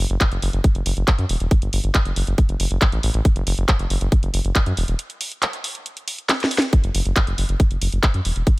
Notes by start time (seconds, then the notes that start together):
0.10 F#1, closed hi-hat
0.21 kick, clap, closed hi-hat
0.32 F#1, closed hi-hat
0.42 F#1, open hi-hat
0.53 F#1, closed hi-hat
0.64 kick, closed hi-hat
0.75 F#1, closed hi-hat
0.86 F#1, open hi-hat
0.97 F#1, closed hi-hat
1.08 kick, clap, closed hi-hat
1.19 F#2, closed hi-hat
1.29 E1, open hi-hat
1.40 E1, closed hi-hat
1.51 kick, closed hi-hat
1.62 G1, closed hi-hat
1.73 G1, open hi-hat
1.84 G1, closed hi-hat
1.95 kick, clap, closed hi-hat
2.05 F#1, closed hi-hat
2.16 F#1, open hi-hat
2.27 F#1, closed hi-hat
2.38 kick, closed hi-hat
2.49 F#1, closed hi-hat
2.60 F#1, open hi-hat
2.71 F#1, closed hi-hat
2.82 kick, clap, closed hi-hat
2.92 A1, closed hi-hat
3.03 A1, open hi-hat
3.14 A1, closed hi-hat
3.25 kick, closed hi-hat
3.36 F#1, closed hi-hat
3.47 F#1, open hi-hat
3.58 F#1, closed hi-hat
3.69 kick, clap, closed hi-hat
3.79 F#1, closed hi-hat
3.90 F#1, open hi-hat
4.01 F#1, closed hi-hat
4.12 kick, closed hi-hat
4.23 F#1, closed hi-hat
4.34 F#1, open hi-hat
4.45 F#1, closed hi-hat
4.55 kick, clap, closed hi-hat
4.66 F#2, closed hi-hat
4.77 E1, open hi-hat
4.88 E1, closed hi-hat
4.99 closed hi-hat
5.10 closed hi-hat
5.21 open hi-hat
5.32 closed hi-hat
5.42 clap, closed hi-hat
5.53 closed hi-hat
5.64 open hi-hat
5.75 closed hi-hat
5.86 closed hi-hat
5.97 closed hi-hat
6.08 open hi-hat
6.18 closed hi-hat
6.29 snare, clap, closed hi-hat
6.40 snare, closed hi-hat
6.51 open hi-hat
6.58 snare, closed hi-hat
6.73 kick, closed hi-hat
6.84 F#1, closed hi-hat
6.95 F#1, open hi-hat
7.05 F#1, closed hi-hat
7.16 kick, clap, closed hi-hat
7.27 F#1, closed hi-hat
7.38 F#1, open hi-hat
7.49 F#1, closed hi-hat
7.60 kick, closed hi-hat
7.71 F#1, closed hi-hat
7.82 F#1, open hi-hat
7.92 F#1, closed hi-hat
8.03 kick, clap, closed hi-hat
8.14 F#2, closed hi-hat
8.25 E1, open hi-hat
8.36 E1, closed hi-hat
8.47 kick, closed hi-hat